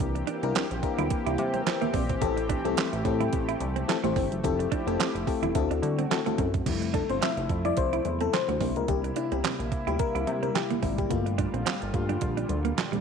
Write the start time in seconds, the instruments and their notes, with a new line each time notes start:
Already playing: analog synth pad E3 A#3 C4 G4, fm electric piano D4 E4 G4 A#4
0.00 analog synth bass C2, kick, closed hi-hat, low conga
0.15 muted clean electric guitar stroke, closed hi-hat, muted conga
0.27 clean electric guitar D4, closed hi-hat
0.43 analog synth bass C2, clean electric guitar C4, fm electric piano D4 E4 G4 A#4, closed hi-hat
0.55 clean electric guitar C4, snare, clap, closed hi-hat, high conga
0.71 analog synth bass A#1, muted clean electric guitar stroke, closed hi-hat
0.83 fm electric piano D4 E4 G4 A#4, kick, closed hi-hat
0.98 analog synth bass D2, clean electric guitar E4, closed hi-hat, high conga, low conga
1.10 kick, closed hi-hat, muted conga
1.26 analog synth bass C2, clean electric guitar E4, closed hi-hat
1.38 analog synth bass C3, muted clean electric guitar stroke, closed hi-hat, high conga
1.54 clean electric guitar C4, closed hi-hat, high conga
1.66 fm electric piano E4 C5, muted clean electric guitar stroke, snare, clap, closed hi-hat, muted conga
1.82 clean electric guitar A#3, fm electric piano G4 E5, closed hi-hat, low conga
1.93 analog synth bass A#1, clean electric guitar C4, fm electric piano D5, kick, open hi-hat, high conga
2.09 fm electric piano E4 C5, kick, closed hi-hat
2.21 analog synth bass A1, analog synth pad A3, fm electric piano C4 E4 G4 A4, kick, closed hi-hat, low conga
2.36 muted clean electric guitar stroke, closed hi-hat, muted conga
2.49 clean electric guitar D4, kick, closed hi-hat
2.65 analog synth bass C2, fm electric piano C4 E4 G4 A4, clean electric guitar C4, closed hi-hat
2.77 clean electric guitar C4, snare, clap, closed hi-hat, high conga
2.93 analog synth bass A1, muted clean electric guitar stroke, closed hi-hat
3.05 analog synth bass A2, fm electric piano C4 E4 G4 A4, kick, closed hi-hat
3.20 clean electric guitar E4, closed hi-hat, high conga, low conga
3.32 analog synth bass A1, kick, closed hi-hat, muted conga
3.48 clean electric guitar E4, closed hi-hat
3.60 analog synth bass C2, muted clean electric guitar stroke, closed hi-hat, high conga
3.76 clean electric guitar C4, closed hi-hat, high conga
3.88 fm electric piano C4 E4 G4 A4, muted clean electric guitar stroke, snare, clap, closed hi-hat
4.04 analog synth bass A1, clean electric guitar A3, fm electric piano C4 E4 G4 C5, closed hi-hat, muted conga, low conga
4.16 analog synth bass G1, clean electric guitar C4, kick, open hi-hat, high conga
4.32 analog synth bass F#1, closed hi-hat
4.43 analog synth bass F1, analog synth pad F3 E4 G4, fm electric piano C4 E4 G4 A4, kick, closed hi-hat, muted conga, low conga
4.59 muted clean electric guitar stroke, closed hi-hat, muted conga
4.72 clean electric guitar D4, kick, closed hi-hat
4.87 analog synth bass F1, fm electric piano C4 E4 G4 A4, clean electric guitar C4, closed hi-hat
4.99 clean electric guitar C4, snare, clap, closed hi-hat, high conga
5.14 analog synth bass F1, muted clean electric guitar stroke, closed hi-hat, muted conga
5.27 fm electric piano C4 E4 G4 A4, kick, open hi-hat
5.42 analog synth bass E1, clean electric guitar E4, closed hi-hat, high conga, low conga
5.55 analog synth bass D2, analog synth pad D3 C4 F#4, fm electric piano C4 E4 F#4 A4, kick, closed hi-hat
5.70 analog synth bass D2, clean electric guitar D4, closed hi-hat, muted conga
5.83 analog synth bass D3, muted clean electric guitar stroke, closed hi-hat, high conga
5.99 clean electric guitar C4, closed hi-hat, high conga
6.10 fm electric piano C4 E4 F#4 A4, muted clean electric guitar stroke, snare, clap, closed hi-hat
6.26 clean electric guitar A3, fm electric piano C4 E4 F#4 A4, closed hi-hat, low conga
6.38 analog synth bass F#2, clean electric guitar C4, kick, closed hi-hat, high conga
6.54 kick, closed hi-hat
6.66 analog synth bass F1, analog synth pad C3 F3 A3 E4, fm electric piano G3 A3 E4, kick, closed hi-hat, crash, low conga
6.81 muted clean electric guitar stroke, closed hi-hat, muted conga
6.94 clean electric guitar D4, fm electric piano A4, kick, closed hi-hat
7.09 analog synth bass G1, clean electric guitar C4, fm electric piano C5, closed hi-hat
7.21 clean electric guitar C4, fm electric piano E5, snare, clap, closed hi-hat, high conga
7.37 analog synth bass F1, muted clean electric guitar stroke, closed hi-hat
7.49 analog synth bass F2, kick, closed hi-hat
7.65 clean electric guitar E4, fm electric piano D5, closed hi-hat, high conga
7.77 analog synth bass C2, fm electric piano C5, kick, closed hi-hat, muted conga
7.93 clean electric guitar E4, closed hi-hat, muted conga
8.05 analog synth bass E2, muted clean electric guitar stroke, closed hi-hat, high conga
8.21 clean electric guitar C4, fm electric piano A4, closed hi-hat, high conga
8.33 fm electric piano C5, muted clean electric guitar stroke, snare, clap, closed hi-hat, muted conga
8.48 analog synth bass D2, clean electric guitar A3, closed hi-hat, muted conga, low conga
8.60 analog synth bass C2, analog synth pad G3 A#3 E4, fm electric piano A#3 D4 E4, clean electric guitar A#3, kick, open hi-hat, high conga
8.76 analog synth bass C#2, fm electric piano A#4, closed hi-hat
8.88 analog synth bass C2, fm electric piano G4, kick, closed hi-hat, muted conga, low conga
9.04 muted clean electric guitar stroke, closed hi-hat
9.16 clean electric guitar D4, fm electric piano E4, closed hi-hat
9.32 analog synth bass C2, clean electric guitar C4, fm electric piano G4, closed hi-hat
9.44 clean electric guitar C4, snare, clap, closed hi-hat, muted conga, high conga
9.59 analog synth bass A#1, muted clean electric guitar stroke, closed hi-hat, muted conga
9.72 kick, closed hi-hat
9.87 analog synth bass D2, clean electric guitar E4, fm electric piano G4, closed hi-hat, high conga
9.99 fm electric piano A#4, kick, closed hi-hat
10.15 analog synth bass C2, clean electric guitar E4, closed hi-hat, muted conga
10.27 analog synth bass C3, muted clean electric guitar stroke, closed hi-hat, high conga
10.43 clean electric guitar C4, fm electric piano A#4, closed hi-hat, high conga
10.55 fm electric piano G4, muted clean electric guitar stroke, snare, clap, closed hi-hat, muted conga
10.70 clean electric guitar A#3, closed hi-hat, low conga
10.82 analog synth bass G#1, clean electric guitar C4, fm electric piano E4, kick, open hi-hat, high conga
10.98 fm electric piano G4, kick, closed hi-hat
11.09 analog synth bass G1, analog synth pad A#2 D3 F4, fm electric piano A3 A#3 F4, kick, closed hi-hat, muted conga, low conga
11.25 muted clean electric guitar stroke, closed hi-hat, muted conga
11.38 clean electric guitar D4, kick, closed hi-hat
11.54 analog synth bass A#1, clean electric guitar C4, closed hi-hat
11.66 clean electric guitar C4, snare, clap, closed hi-hat, high conga
11.80 analog synth bass G1, muted clean electric guitar stroke, closed hi-hat, muted conga
11.93 analog synth bass G2, fm electric piano A3 A#3 F4, kick, closed hi-hat
12.09 clean electric guitar D4, closed hi-hat, high conga
12.21 analog synth bass A#1, kick, closed hi-hat
12.37 clean electric guitar D4, closed hi-hat, muted conga
12.49 analog synth bass D2, muted clean electric guitar stroke, closed hi-hat, high conga
12.65 clean electric guitar A#3, closed hi-hat, high conga
12.77 muted clean electric guitar stroke, snare, clap, closed hi-hat, muted conga
12.92 analog synth bass A#1, clean electric guitar G3, closed hi-hat, low conga